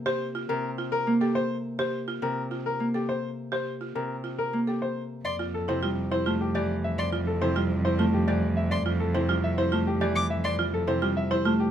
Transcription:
0.00 0.48 C3 medium
0.00 1.06 A#3 medium
0.06 0.25 G4 medium
0.06 0.25 C5 medium
0.35 0.54 F4 medium
0.49 2.21 C3 medium
0.49 0.68 A#4 medium
0.78 0.97 F4 medium
0.92 1.11 A#4 medium
1.07 2.79 A#3 medium
1.21 1.40 G4 medium
1.21 1.40 A4 medium
1.35 1.54 C5 medium
1.79 1.98 G4 medium
1.79 1.98 C5 medium
2.08 2.27 F4 medium
2.22 3.94 C3 medium
2.22 2.41 A#4 medium
2.51 2.70 F4 medium
2.66 2.84 A#4 medium
2.80 4.52 A#3 medium
2.94 3.13 G4 medium
2.94 3.13 A4 medium
3.09 3.28 C5 medium
3.52 3.71 G4 medium
3.52 3.71 C5 medium
3.81 4.00 F4 medium
3.95 5.28 C3 medium
3.95 4.14 A#4 medium
4.24 4.43 F4 medium
4.38 4.57 A#4 medium
4.53 5.28 A#3 medium
4.67 4.86 G4 medium
4.67 4.86 A4 soft
4.82 5.01 C5 medium
5.25 11.71 F2 medium
5.25 5.44 D5 medium
5.25 5.36 C6 medium
5.39 5.58 F4 medium
5.54 5.73 A4 medium
5.68 7.40 C3 medium
5.68 5.87 E4 medium
5.68 5.87 C5 medium
5.83 7.55 G3 medium
5.83 6.02 F4 medium
6.11 6.30 E4 medium
6.11 6.30 C5 medium
6.26 7.98 A3 medium
6.26 6.45 F4 medium
6.41 6.59 G4 medium
6.55 8.27 E3 medium
6.55 6.74 G4 medium
6.55 6.74 D5 medium
6.84 7.03 E5 medium
6.98 7.17 D5 medium
6.98 7.09 C6 medium
7.13 7.31 F4 medium
7.27 7.46 A4 medium
7.41 9.13 C3 medium
7.41 7.60 E4 medium
7.41 7.60 C5 medium
7.56 9.28 G3 medium
7.56 7.75 F4 medium
7.85 8.04 E4 medium
7.85 8.04 C5 medium
7.99 9.71 A3 medium
7.99 8.18 F4 medium
8.14 8.32 G4 medium
8.28 10.00 E3 medium
8.28 8.47 G4 medium
8.28 8.47 D5 medium
8.57 8.76 E5 medium
8.71 8.90 D5 medium
8.71 8.82 C6 medium
8.86 9.05 F4 medium
9.00 9.19 A4 medium
9.14 10.86 C3 medium
9.14 9.33 E4 medium
9.14 9.33 C5 medium
9.29 11.01 G3 medium
9.29 9.48 F4 medium
9.44 9.62 E5 medium
9.58 9.77 E4 medium
9.58 9.77 C5 medium
9.72 11.44 A3 medium
9.72 9.91 F4 medium
9.87 10.06 G4 medium
10.01 11.71 E3 medium
10.01 10.20 G4 medium
10.01 10.20 D5 medium
10.16 10.26 D6 medium
10.30 10.49 E5 medium
10.44 10.63 D5 medium
10.44 10.55 C6 medium
10.59 10.78 F4 medium
10.74 10.92 A4 medium
10.87 11.71 C3 medium
10.87 11.06 E4 medium
10.87 11.06 C5 medium
11.02 11.71 G3 medium
11.02 11.21 F4 medium
11.17 11.35 E5 medium
11.31 11.50 E4 medium
11.31 11.50 C5 medium
11.45 11.71 A3 medium
11.45 11.64 F4 medium
11.60 11.71 G4 medium

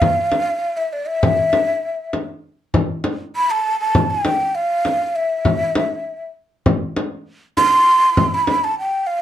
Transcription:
0.00 0.78 F5 loud
0.00 frame drum medium
0.32 frame drum medium
0.77 0.94 E5 medium
0.93 1.08 D5 medium
1.06 2.23 E5 medium
1.23 frame drum loud
1.53 frame drum medium
2.13 frame drum medium
2.74 frame drum medium
3.04 frame drum medium
3.36 3.52 B5 loud
3.51 3.79 A5 medium
3.80 4.12 A5 medium
3.95 frame drum medium
4.10 4.56 G5 medium
4.25 frame drum medium
4.55 5.17 F5 medium
4.85 frame drum medium
5.16 6.25 E5 medium
5.45 frame drum medium
5.75 frame drum medium
6.66 frame drum medium
6.96 frame drum medium
7.57 8.36 C6 loud
7.57 frame drum medium
8.17 frame drum medium
8.34 8.66 B5 loud
8.47 frame drum medium
8.64 8.78 A5 medium
8.79 9.08 G5 medium
9.07 9.22 F5 medium

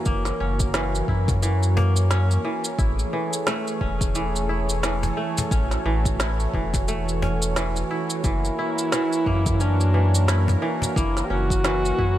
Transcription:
0.00 0.73 E3 medium
0.00 12.18 E3 medium
0.00 2.75 A#3 medium
0.00 0.40 C#4 medium
0.00 0.95 E4 medium
0.00 2.75 F#4 medium
0.00 2.75 A#4 medium
0.00 12.18 C#5 medium
0.06 0.32 F#1 loud
0.06 1.76 A#3 medium
0.06 kick loud
0.06 shaker medium
0.25 snare soft
0.25 shaker soft
0.40 1.02 F#1 medium
0.40 2.11 C#4 medium
0.60 kick loud
0.60 shaker medium
0.74 1.41 E3 medium
0.74 snare loud
0.74 cajon slap soft
0.74 shaker medium
0.95 shaker soft
1.08 2.38 F#2 medium
1.08 2.65 E4 medium
1.08 kick medium
1.28 kick loud
1.28 cajon bass medium
1.28 shaker medium
1.43 2.43 E3 medium
1.43 shaker medium
1.63 shaker soft
1.77 3.53 A#3 medium
1.77 cajon bass loud
1.77 cajon slap medium
1.96 shaker medium
2.11 3.81 C#4 medium
2.11 snare medium
2.11 shaker medium
2.31 shaker soft
2.45 2.84 E3 medium
2.65 shaker medium
2.78 3.05 A1 loud
2.78 8.20 A3 medium
2.78 4.35 E4 medium
2.78 5.48 G#4 medium
2.78 8.20 A4 loud
2.78 kick loud
2.78 shaker medium
2.99 shaker soft
3.13 4.14 E3 medium
3.33 shaker medium
3.47 5.17 A3 medium
3.47 snare loud
3.47 shaker medium
3.67 shaker soft
3.81 5.11 E1 medium
3.81 5.51 C#4 medium
3.81 kick medium
4.01 kick loud
4.01 shaker medium
4.15 4.82 E3 medium
4.15 shaker medium
4.36 shaker soft
4.49 6.06 E4 medium
4.69 shaker medium
4.83 5.84 E3 medium
4.83 snare loud
4.83 shaker medium
5.03 cajon bass medium
5.03 cajon slap medium
5.03 shaker soft
5.17 6.88 A3 medium
5.38 cajon bass medium
5.38 shaker medium
5.51 5.77 A1 medium
5.51 7.22 C#4 medium
5.51 10.93 F#4 medium
5.51 kick loud
5.51 shaker medium
5.71 snare soft
5.71 shaker soft
5.85 6.47 A1 loud
5.85 6.53 E3 medium
6.05 kick loud
6.05 shaker medium
6.20 7.77 E4 medium
6.20 snare medium
6.20 shaker medium
6.40 shaker soft
6.53 7.83 E1 medium
6.53 7.55 E3 medium
6.53 kick medium
6.74 kick loud
6.74 cajon bass medium
6.74 shaker medium
6.88 8.88 A3 medium
6.88 shaker medium
7.09 shaker soft
7.22 8.96 C#4 medium
7.22 cajon bass loud
7.22 cajon slap medium
7.42 shaker medium
7.56 8.23 E3 medium
7.56 snare loud
7.56 shaker medium
7.76 shaker soft
7.91 8.58 E4 medium
8.10 shaker medium
8.24 8.50 F#1 loud
8.24 8.91 E3 medium
8.24 12.18 A#3 medium
8.24 9.62 E4 loud
8.24 12.18 A#4 medium
8.24 kick loud
8.24 shaker medium
8.45 shaker soft
8.59 10.15 E4 medium
8.78 shaker medium
8.92 9.93 E3 medium
8.92 snare medium
8.92 shaker medium
9.13 shaker soft
9.26 10.56 F#2 medium
9.26 10.96 A#3 medium
9.26 kick medium
9.46 kick loud
9.46 shaker medium
9.60 11.30 C#4 medium
9.60 10.63 D4 loud
9.60 shaker medium
9.81 shaker soft
9.94 10.61 E3 medium
10.15 shaker medium
10.28 11.85 E4 medium
10.28 snare medium
10.28 shaker soft
10.48 cajon bass medium
10.48 cajon slap medium
10.48 shaker soft
10.62 11.63 E3 medium
10.82 cajon bass medium
10.82 shaker medium
10.96 11.23 F#1 medium
10.96 12.18 A#3 medium
10.96 11.27 E4 loud
10.96 12.18 E4 medium
10.96 kick loud
10.96 shaker medium
11.17 snare soft
11.17 shaker soft
11.25 11.32 G4 medium
11.30 11.92 F#1 medium
11.30 12.18 C#4 medium
11.30 12.18 F#4 loud
11.50 kick medium
11.50 shaker medium
11.64 12.18 E3 medium
11.64 snare loud
11.64 cajon slap soft
11.64 shaker medium
11.85 shaker soft
11.99 12.18 F#2 medium
11.99 12.18 E4 medium
11.99 kick medium

